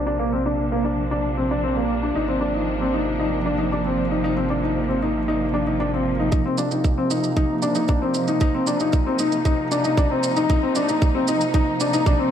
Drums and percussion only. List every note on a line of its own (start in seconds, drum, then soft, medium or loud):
6.32 kick medium
6.32 shaker soft
6.58 shaker medium
6.71 shaker soft
6.84 kick medium
6.84 shaker soft
7.11 shaker medium
7.24 shaker soft
7.37 kick medium
7.37 shaker soft
7.62 shaker medium
7.75 shaker soft
7.88 kick medium
7.88 shaker soft
8.14 shaker medium
8.27 shaker soft
8.41 kick loud
8.41 shaker soft
8.67 shaker medium
8.80 shaker soft
8.93 kick loud
8.93 shaker soft
9.19 shaker medium
9.32 shaker soft
9.45 kick medium
9.45 shaker soft
9.72 shaker medium
9.84 shaker soft
9.97 kick loud
9.97 shaker soft
10.23 shaker medium
10.36 shaker soft
10.50 kick loud
10.50 shaker soft
10.75 shaker medium
10.89 shaker soft
11.02 kick loud
11.02 shaker soft
11.28 shaker medium
11.41 shaker soft
11.54 kick loud
11.54 shaker soft
11.80 shaker medium
11.93 shaker soft
12.06 kick loud
12.06 shaker soft